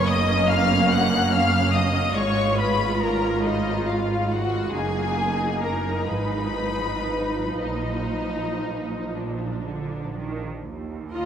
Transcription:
0.00 2.11 F#1 medium
0.00 2.11 F#2 medium
0.00 2.11 A#3 medium
0.00 2.11 C#4 medium
0.06 0.49 D#5 medium
0.06 0.49 D#6 medium
0.49 0.91 F5 medium
0.49 0.90 F6 medium
0.91 1.33 F#5 medium
0.91 1.33 F#6 medium
1.33 1.73 F5 medium
1.33 1.74 F6 medium
1.74 2.15 D#5 medium
1.74 2.16 D#6 medium
2.15 4.70 G#1 medium
2.15 4.70 G#2 medium
2.15 4.70 G#3 medium
2.15 4.70 F4 medium
2.15 2.58 C#5 medium
2.15 2.57 C#6 medium
2.58 3.00 B4 medium
2.58 3.00 B5 medium
3.01 3.43 A#4 medium
3.01 3.43 A#5 medium
3.44 3.88 D#4 medium
3.44 3.86 D#5 medium
3.86 4.31 F4 soft
3.86 4.30 F5 medium
4.32 4.74 F#4 medium
4.32 4.74 F#5 medium
4.74 6.05 F#1 soft
4.74 6.06 F#2 soft
4.74 6.04 A#3 soft
4.74 9.11 D#4 soft
4.74 5.62 G#4 medium
4.74 5.60 G#5 medium
5.63 6.08 A#4 soft
5.63 6.09 A#5 medium
6.09 7.60 G#1 soft
6.09 7.60 G#2 soft
6.09 10.42 F3 soft
6.09 7.60 B4 soft
6.09 7.60 B5 medium
7.60 10.42 A#1 soft
7.60 9.02 A#2 soft
7.60 9.16 D#4 soft
7.60 9.13 D#5 soft
9.15 9.62 A#2 soft
9.15 10.41 D4 soft
9.66 10.17 D3 soft
10.17 10.65 D#3 soft
10.66 11.25 D#2 soft
11.13 11.25 F4 medium
11.13 11.25 A#4 soft
11.13 11.25 D#5 soft

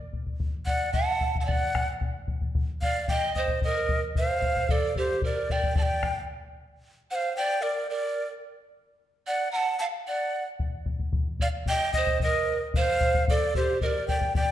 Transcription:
0.13 bombo low soft
0.26 bombo low soft
0.40 bombo low medium
0.66 0.91 D5 medium
0.66 0.91 F#5 loud
0.66 bombo low medium
0.93 1.36 F#5 loud
0.93 1.37 A5 loud
0.93 bombo low medium
1.21 bombo low soft
1.35 bombo low medium
1.40 1.47 F#5 medium
1.40 1.50 A5 medium
1.45 1.86 D5 medium
1.45 1.88 F#5 medium
1.45 bombo low medium
1.75 bombo rim medium
1.75 bombo low medium
2.01 bombo low medium
2.28 bombo low medium
2.41 bombo low medium
2.55 bombo low medium
2.81 3.07 D5 medium
2.81 3.06 F5 loud
2.81 bombo low soft
3.08 3.34 D#5 loud
3.08 3.33 G5 medium
3.08 bombo low medium
3.35 3.61 C5 medium
3.35 3.60 D#5 medium
3.35 bombo low soft
3.48 bombo low medium
3.62 4.01 A#4 medium
3.62 4.00 D#5 loud
3.62 bombo low medium
3.89 bombo low medium
4.15 4.71 C5 medium
4.15 4.73 F5 loud
4.15 bombo low medium
4.42 bombo low medium
4.57 bombo low medium
4.69 4.96 A4 medium
4.69 4.97 D5 loud
4.69 bombo low medium
4.95 5.21 G4 medium
4.95 5.22 C5 medium
4.95 bombo low medium
5.22 5.52 A#4 medium
5.22 5.53 D5 medium
5.22 bombo low medium
5.50 5.76 D5 medium
5.50 5.77 G5 medium
5.50 bombo low medium
5.63 bombo low medium
5.75 6.14 D5 medium
5.75 5.83 A5 medium
5.75 bombo low medium
5.82 6.15 G5 loud
6.03 bombo rim medium
6.03 bombo low medium
7.11 7.36 C5 medium
7.11 7.16 F#5 medium
7.15 7.36 F5 medium
7.36 7.64 D5 loud
7.36 7.64 G5 loud
7.62 7.89 A#4 medium
7.62 7.90 D5 medium
7.90 8.28 A#4 medium
7.90 8.28 D5 medium
9.27 9.51 D5 medium
9.27 9.51 F#5 medium
9.51 9.77 F#5 medium
9.51 9.57 A#5 medium
9.56 9.77 A5 loud
9.79 9.87 F5 medium
9.79 9.85 A5 medium
10.07 10.44 D5 medium
10.07 10.44 F#5 medium
10.59 bombo low medium
10.86 bombo low medium
10.99 bombo low medium
11.13 bombo low medium
11.40 11.47 D5 medium
11.40 11.48 F5 loud
11.40 bombo low medium
11.66 11.93 D#5 loud
11.66 11.93 G5 loud
11.66 bombo low medium
11.93 12.20 C5 medium
11.93 12.18 D#5 loud
11.93 bombo low medium
12.07 bombo low medium
12.20 12.59 D#5 loud
12.20 bombo low medium
12.24 12.60 A#4 medium
12.74 13.25 C5 loud
12.74 13.25 F5 loud
12.74 bombo low medium
13.01 bombo low medium
13.14 bombo low medium
13.28 13.54 A4 medium
13.28 13.54 D5 loud
13.28 bombo low medium
13.55 13.81 G4 medium
13.55 13.81 C5 medium
13.55 bombo low medium
13.81 14.07 A#4 medium
13.81 13.87 D#5 medium
13.81 bombo low medium
13.86 14.07 D5 medium
14.08 14.33 D5 medium
14.08 14.33 G5 medium
14.08 bombo low medium
14.21 bombo low medium
14.35 14.52 D5 medium
14.35 14.52 G5 loud
14.35 bombo low medium

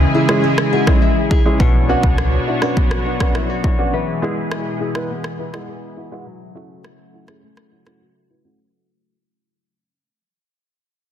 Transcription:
0.00 1.58 C#3 medium
0.00 1.60 C#3 medium
0.00 1.58 E3 medium
0.00 0.43 G#3 medium
0.00 1.58 G#3 medium
0.00 2.18 C#4 medium
0.00 0.13 E4 medium
0.00 1.58 E4 medium
0.00 0.72 G#4 medium
0.00 1.58 G#4 medium
0.14 0.20 E4 soft
0.14 1.01 E4 medium
0.14 0.20 G#4 medium
0.29 0.41 G#3 medium
0.29 0.41 C#4 medium
0.29 0.41 E4 medium
0.29 0.41 G#4 medium
0.29 cross-stick medium
0.44 1.66 G#3 medium
0.58 cross-stick medium
0.73 0.79 E4 soft
0.73 0.79 F#4 medium
0.73 1.30 G#4 medium
0.87 0.99 G#3 medium
0.87 0.99 C#4 medium
0.87 0.99 E4 medium
0.87 0.99 G#4 medium
0.87 kick loud
0.87 cross-stick medium
1.02 1.66 E4 medium
1.31 1.37 E4 soft
1.31 1.60 G#4 medium
1.31 1.37 G#4 medium
1.31 kick medium
1.46 1.57 G#3 medium
1.46 1.57 C#4 medium
1.46 1.57 E4 medium
1.46 1.57 G#4 medium
1.60 1.95 B1 loud
1.60 3.93 B2 medium
1.60 3.91 F#3 medium
1.60 3.91 B3 medium
1.60 3.91 D4 medium
1.60 3.91 F#4 medium
1.60 3.91 C#5 medium
1.60 3.05 C#5 medium
1.60 kick loud
1.89 2.01 B3 medium
1.89 2.01 C#4 medium
1.89 2.01 D4 medium
1.89 2.01 F#4 loud
1.89 2.47 F#4 medium
2.03 2.39 C#2 medium
2.03 kick medium
2.18 3.99 D4 medium
2.18 cross-stick medium
2.47 2.53 D4 soft
2.47 2.62 E4 medium
2.47 2.53 F#4 medium
2.62 2.74 B3 medium
2.62 2.74 C#4 medium
2.62 2.74 D4 medium
2.62 3.35 F#4 medium
2.62 2.74 F#4 medium
2.62 cross-stick medium
2.77 5.09 B3 medium
2.77 kick medium
2.91 cross-stick medium
3.06 3.12 D4 soft
3.06 3.12 F#4 medium
3.06 3.63 C#5 medium
3.20 3.32 B3 medium
3.20 3.32 C#4 medium
3.20 3.32 D4 medium
3.20 3.32 F#4 medium
3.20 kick medium
3.20 cross-stick medium
3.35 3.49 E4 medium
3.35 cross-stick medium
3.49 3.99 F#4 medium
3.64 3.70 D4 soft
3.64 3.70 E4 medium
3.64 3.93 C#5 medium
3.64 kick medium
3.79 3.90 B3 medium
3.79 3.90 C#4 medium
3.79 3.90 D4 medium
3.79 3.90 F#4 medium
3.93 6.24 B2 medium
3.93 6.26 E3 medium
3.93 6.24 E3 medium
3.93 6.24 G#3 medium
3.93 8.55 E4 medium
3.93 6.24 G#4 medium
3.93 5.38 B4 medium
4.22 4.34 G#3 medium
4.22 4.34 B3 medium
4.22 4.34 E4 medium
4.22 4.79 G#4 medium
4.22 4.34 G#4 loud
4.51 6.58 E4 medium
4.51 cross-stick medium
4.80 4.86 E4 soft
4.80 5.67 G#4 medium
4.80 4.86 G#4 medium
4.95 5.07 G#3 medium
4.95 5.07 B3 medium
4.95 5.07 E4 medium
4.95 5.07 B4 medium
4.95 cross-stick medium
5.10 6.32 B3 medium
5.24 cross-stick medium
5.39 5.45 E4 soft
5.39 5.45 G#4 medium
5.39 5.96 B4 medium
5.53 5.65 G#3 medium
5.53 5.65 B3 medium
5.53 5.65 E4 medium
5.53 5.65 G#4 medium
5.53 cross-stick medium
5.68 6.32 G#4 medium
5.97 6.03 E4 soft
5.97 6.03 F#4 medium
5.97 6.26 B4 medium
6.12 6.23 G#3 medium
6.12 6.23 B3 medium
6.12 6.23 E4 medium
6.12 6.23 F#4 medium
6.26 8.57 C#3 medium
6.26 9.15 F#3 medium
6.26 8.57 F#3 medium
6.26 8.57 A3 medium
6.26 8.57 F#4 medium
6.26 7.72 C#5 medium
6.55 6.67 A3 medium
6.55 6.67 C#4 medium
6.55 6.67 E4 medium
6.55 7.13 F#4 medium
6.55 6.67 F#4 medium
6.85 9.15 E4 medium
6.85 cross-stick medium
7.14 7.19 E4 soft
7.14 8.01 F#4 medium
7.14 7.19 F#4 soft
7.28 7.40 A3 medium
7.28 7.40 C#4 medium
7.28 7.40 E4 medium
7.28 7.40 G#4 medium
7.28 cross-stick medium
7.43 9.15 A3 medium
7.57 cross-stick medium
7.72 7.78 E4 soft
7.72 7.78 F#4 medium
7.72 8.30 C#5 medium
7.86 7.98 A3 medium
7.86 7.98 C#4 medium
7.86 7.98 E4 medium
7.86 7.98 F#4 medium
7.86 cross-stick medium
8.01 9.15 F#4 medium
8.30 8.36 E4 soft
8.30 8.36 F#4 medium
8.30 8.45 B4 medium
8.45 8.56 A3 medium
8.45 8.56 C#4 medium
8.45 8.56 E4 medium
8.45 8.56 F#4 medium
8.45 8.65 C#5 medium

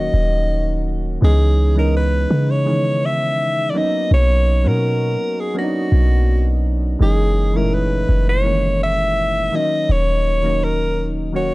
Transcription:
0.00 1.23 D#3 medium
0.00 1.24 F#3 medium
0.00 1.23 A#3 medium
0.00 1.23 C#4 medium
0.00 1.24 D#4 medium
0.00 1.01 F#4 medium
0.00 0.83 D#5 loud
0.14 1.18 D#1 loud
1.21 2.26 C#2 loud
1.21 1.68 E3 medium
1.21 1.68 G#3 medium
1.21 1.68 B3 medium
1.21 1.69 C#4 medium
1.21 1.69 D#4 medium
1.21 1.74 G#4 loud
1.75 2.53 E3 medium
1.75 2.53 G#3 medium
1.75 2.53 B3 medium
1.75 2.54 C#4 medium
1.75 2.54 D#4 medium
1.75 1.94 A#4 medium
1.96 2.53 B4 loud
2.31 3.71 C#3 loud
2.51 3.07 C#5 loud
2.65 3.76 D#3 medium
2.65 3.74 E3 medium
2.65 3.75 G#3 medium
2.65 3.74 B3 medium
2.65 3.75 C#4 medium
3.05 3.71 E5 loud
3.70 4.51 F#3 medium
3.70 3.79 D5 medium
3.75 4.52 A#3 medium
3.75 4.52 B3 medium
3.75 4.52 C#4 medium
3.75 4.53 D#4 medium
3.75 4.12 D#5 loud
4.11 4.67 B1 loud
4.11 4.69 C#5 loud
4.64 5.17 B2 loud
4.64 5.41 F#3 medium
4.64 5.42 A#3 medium
4.64 5.42 B3 medium
4.64 5.43 C#4 medium
4.64 5.43 F#4 medium
4.64 5.41 A#4 loud
5.40 5.57 G#4 medium
5.54 6.78 F#3 medium
5.54 6.79 A#3 medium
5.54 6.79 B3 medium
5.54 6.79 C#4 medium
5.54 5.63 D4 medium
5.54 6.61 F#4 medium
5.64 6.83 D#4 medium
5.92 6.96 B1 loud
6.99 8.05 F#1 loud
6.99 7.46 E3 medium
6.99 7.46 G#3 medium
6.99 7.47 A#3 medium
6.99 7.47 C#4 medium
6.99 7.47 D#4 medium
6.99 7.58 G#4 loud
7.54 8.31 E3 medium
7.54 8.31 G#3 medium
7.54 7.61 A3 medium
7.54 8.32 C#4 medium
7.54 8.32 E4 medium
7.54 7.76 A#4 medium
7.62 8.35 A#2 medium
7.74 8.27 B4 loud
8.09 9.49 F#1 loud
8.29 8.78 C#5 loud
8.44 9.51 D#3 medium
8.44 9.53 E3 medium
8.44 9.53 G#3 medium
8.44 9.53 A#3 medium
8.44 9.53 C#4 medium
8.83 9.57 E5 loud
9.52 10.30 D#3 medium
9.52 10.30 F#3 medium
9.52 10.31 A#3 medium
9.52 10.31 C#4 medium
9.52 10.31 D#4 medium
9.52 9.93 D#5 loud
9.89 11.54 D#1 loud
9.89 10.65 C#5 loud
10.42 11.20 D#3 medium
10.42 11.20 F#3 medium
10.42 11.21 A#3 medium
10.42 11.21 C#4 medium
10.42 11.22 D#4 medium
10.64 11.08 A#4 medium
11.33 11.54 D#3 medium
11.33 11.54 F#3 medium
11.33 11.54 A#3 medium
11.33 11.54 C#4 medium
11.33 11.54 F#4 medium
11.33 11.54 C#5 loud

